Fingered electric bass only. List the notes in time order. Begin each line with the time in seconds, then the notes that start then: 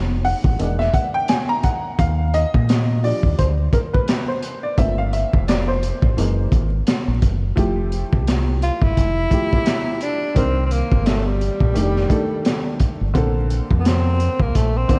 Already playing: F1
0.44 G#1
0.60 E1
1.99 D#2
2.55 A#2
3.23 D#2
3.39 D2
4.78 G1
5.34 F1
6.03 A1
6.18 F#1
6.52 G#1
7.08 A#1
7.23 F#1
7.57 F1
8.13 C2
8.82 G1
8.98 F1
10.36 C2
10.92 G1
11.61 A#1
11.76 F1
13.01 G1
13.15 A#1
13.71 F2
14.40 C2
14.56 A#1